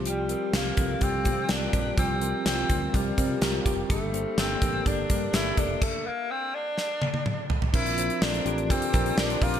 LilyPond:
<<
  \new Staff \with { instrumentName = "Analog synth pad" } { \time 4/4 \key g \dorian \tempo 4 = 125 r1 | r1 | r1 | r1 |
<c'' d'' bes'' d'''>1 | }
  \new Staff \with { instrumentName = "Tine electric piano" } { \time 4/4 \key g \dorian <g c' f' g'>8 <g c' f' bes'>8 <g c' f' g'>8 <g c' f' a'>8 <g c' f' g'>8 <g c' f' g'>8 <g c' f' bes'>8 <g c' f' g'>8 | <g c' f' g'>8 <g c' f' bes'>8 <g c' f' g'>8 <g c' f' bes'>8 <g c' f' g'>8 <g c' f' bes'>8 <g c' f' bes'>8 <g c' f' g'>8 | <bes d' g' a'>8 <bes d' g' c''>8 <bes d' g' a'>8 <bes d' g' bes'>8 <bes d' g' a'>8 <bes d' g' bes'>8 <bes d' g' a'>8 <bes d' g' a'>8 | r1 |
<c' d' f' bes'>8 <c' d' f' c''>8 <c' d' f' a'>8 <c' d' f' g'>8 <c' d' f' bes'>8 <c' d' f' bes'>8 <c' d' f' c''>8 <c' d' f' bes'>8 | }
  \new Staff \with { instrumentName = "Clean electric guitar" } { \time 4/4 \key g \dorian <f g'>8 c'8 f'8 c'8 f'8 c'8 f'8 g'8 | <f g'>8 c'8 f'8 c'8 f'8 c'8 f'8 g'8 | <g a'>8 bes8 d'8 bes8 d'8 bes8 d'8 a'8 | r1 |
f8 c'8 d'8 bes'8 c'8 d'8 bes'8 c'16 d'16 | }
  \new Staff \with { instrumentName = "Tenor saxophone" } { \time 4/4 \key g \dorian g4 bes4 c'4 d'4 | c'4 c'4 g4. r8 | a4 c'4 d'4 e'8 d'8 | a8 bes8 c'8 d'2 r8 |
e'4 d'4 c'4 d'8 f'8 | }
  \new Staff \with { instrumentName = "Fretless electric bass" } { \clef bass \time 4/4 \key g \dorian c,4 c,8 c,8 c,8 c8 c,8 bes,,8 | c,4 c,8 d,8 c,8 c8 c,8 f,,8 | g,,4 g,,8 a,,8 g,,8 g,8 g,,8 f,,8 | r1 |
bes,,4 bes,,8 a,,8. r16 bes,,8 bes,,8 bes,,8 | }
  \new DrumStaff \with { instrumentName = "Drums" } \drummode { \time 4/4 hh8 hh8 <hh sn>8 <hh bd>8 <hh bd>8 <hh bd>8 <hh sn>8 <hh bd>8 | <hh bd>8 hh8 <hh sn>8 <hh bd>8 <hh bd>8 <hh bd>8 <hh sn>8 <hh bd>8 | <hh bd>8 hh8 <hh sn>8 <hh bd>8 <hh bd>8 <hh bd>8 <hh sn>8 <hh bd>8 | <cymc bd>4 r4 sn8 tommh16 tommh16 toml8 tomfh16 tomfh16 |
<cymc bd>16 hh16 hh16 hh16 sn16 hh16 hh16 hh16 <hh bd>16 hh16 <hh bd>16 hh16 sn16 hh16 <hho bd>16 hh16 | }
>>